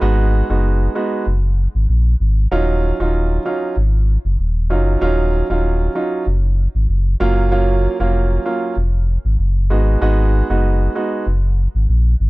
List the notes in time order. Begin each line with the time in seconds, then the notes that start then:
0.01 G#1 G#3 B3 D#4 F#4
0.50 F#1 G#3 B3 D#4 F#4
0.95 G#3 B3 D#4 F#4
1.27 F#1
1.75 G#1
1.89 A#1
2.20 G#1
2.51 D#1 F#3 C#4 D#4 F4
3.00 D#1 F#3 C#4 D#4 F4
3.45 F#3 C#4 D#4 F4
3.77 G#1
4.25 F#1
4.39 D#1
4.70 F#1 F#3 C#4 D#4 F4
5.01 D#1 F#3 C#4 D#4 F4
5.50 D#1 F#3 C#4 D#4 F4
5.95 F#3 C#4 D#4 F4
6.27 F#1
6.75 G#1
6.89 F#1
7.20 F#1 F#3 A#3 C#4 F4
7.51 F#3 A#3 C#4 F4
8.00 F1 F#3 A#3 C#4 F4
8.45 F#3 A#3 C#4 F4
8.77 F1
9.25 G#1
9.39 F#1
9.70 G#1 G#3 B3 D#4 F#4
10.01 G#1 G#3 B3 D#4 F#4
10.50 F#1 G#3 B3 D#4 F#4
10.95 G#3 B3 D#4 F#4
11.27 F#1
11.75 G#1
11.89 A#1
12.20 G#1